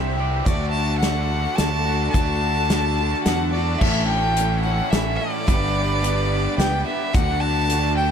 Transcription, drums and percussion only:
0.46 kick, closed hi-hat
1.03 snare, closed hi-hat
1.58 snare, closed hi-hat
2.14 kick, closed hi-hat
2.70 snare, closed hi-hat
3.26 snare, closed hi-hat
3.81 kick, crash
4.37 closed hi-hat
4.93 snare, closed hi-hat
5.48 kick, closed hi-hat
6.04 closed hi-hat
6.60 snare, closed hi-hat
7.15 kick, closed hi-hat
7.70 closed hi-hat

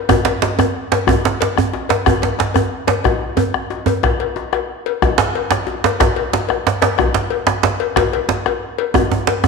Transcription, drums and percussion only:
0.09 bombo rim, bombo low, cowbell, djembe tone
0.11 djembe tone, djembe bass
0.25 cowbell, djembe slap
0.42 djembe slap
0.59 bombo rim, cowbell, djembe tone
0.92 cowbell, djembe slap
1.07 bombo rim, bombo low, cowbell, djembe slap, djembe tone, djembe bass
1.09 djembe tone
1.25 djembe slap
1.41 cowbell, djembe slap
1.56 bombo rim, djembe slap, djembe tone
1.58 djembe tone
1.74 djembe slap
1.89 cowbell, djembe slap
2.06 bombo rim, bombo low, cowbell, djembe tone, djembe bass
2.22 cowbell, djembe slap
2.39 djembe slap
2.54 bombo rim, cowbell, djembe tone
2.87 cowbell, djembe slap
3.04 bombo rim, bombo low, cowbell, djembe slap, djembe tone, djembe bass
3.37 cowbell, djembe tone
3.54 bombo rim, djembe slap, djembe tone
3.70 djembe slap
3.86 cowbell, djembe tone
4.03 bombo rim, bombo low, cowbell, djembe tone, djembe bass
4.20 cowbell
4.36 djembe slap
4.53 bombo rim, cowbell, djembe tone
4.86 cowbell
5.02 bombo rim, bombo low, cowbell, djembe slap, djembe tone, djembe bass
5.18 djembe slap
5.35 cowbell
5.51 bombo rim, djembe slap, djembe tone
5.67 djembe slap
5.84 cowbell, djembe slap
6.00 bombo rim, bombo low, cowbell, djembe slap, djembe tone, djembe bass
6.16 cowbell
6.33 bombo rim, djembe slap
6.49 bombo rim, cowbell, djembe tone
6.66 bombo rim, djembe slap
6.82 cowbell, djembe slap
6.98 bombo rim, bombo low, cowbell, djembe slap, djembe tone, djembe bass
7.14 djembe slap
7.30 cowbell, djembe slap
7.47 bombo rim, djembe slap, djembe tone
7.63 bombo rim, djembe slap
7.80 cowbell
7.96 bombo rim, bombo low, cowbell, djembe slap, djembe tone, djembe bass
8.13 cowbell
8.29 djembe slap
8.46 bombo rim, cowbell, djembe tone
8.78 cowbell
8.94 bombo rim, bombo low, cowbell, djembe slap, djembe tone, djembe bass
9.11 djembe tone
9.27 cowbell, djembe slap
9.44 bombo rim, djembe tone

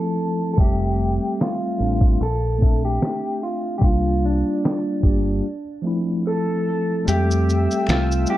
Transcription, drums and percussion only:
0.58 kick, closed hi-hat
1.40 snare, closed hi-hat
2.01 kick
2.23 closed hi-hat
2.62 kick
3.02 snare, closed hi-hat
3.82 kick, closed hi-hat
4.64 snare, closed hi-hat
5.03 kick
7.08 closed hi-hat, shaker
7.31 shaker
7.49 shaker
7.71 shaker
7.87 finger snap, snare, closed hi-hat, shaker
8.11 shaker
8.26 shaker

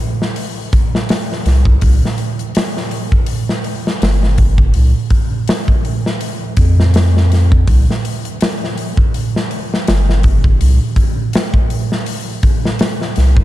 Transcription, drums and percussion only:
0.22 snare
0.36 open hi-hat
0.73 kick, open hi-hat
0.95 snare
1.09 snare, open hi-hat
1.32 snare
1.46 snare, open hi-hat
1.65 kick
1.81 kick, open hi-hat
2.05 snare
2.18 open hi-hat
2.39 closed hi-hat
2.55 snare, open hi-hat
2.77 snare
2.91 open hi-hat
3.12 kick
3.26 open hi-hat
3.49 snare
3.64 open hi-hat
3.87 snare
4.02 snare, open hi-hat
4.23 snare
4.38 kick, open hi-hat
4.58 kick
4.74 open hi-hat
5.10 kick, open hi-hat
5.48 snare, open hi-hat
5.68 kick
5.85 open hi-hat
6.06 snare
6.21 open hi-hat
6.57 kick, open hi-hat
6.80 snare
6.94 snare, open hi-hat
7.17 snare
7.32 snare, open hi-hat
7.52 kick
7.68 kick, open hi-hat
7.91 snare
8.05 open hi-hat
8.25 closed hi-hat
8.41 snare, open hi-hat
8.64 snare
8.78 open hi-hat
8.97 kick
9.14 open hi-hat
9.36 snare
9.51 open hi-hat
9.74 snare
9.88 snare, open hi-hat
10.10 snare
10.23 kick, open hi-hat
10.44 kick
10.61 open hi-hat
10.96 kick, open hi-hat
11.33 snare, open hi-hat
11.54 kick
11.70 open hi-hat
11.92 snare
12.06 open hi-hat
12.43 kick, open hi-hat
12.65 snare
12.79 snare, open hi-hat
13.02 snare
13.16 snare, open hi-hat
13.37 kick

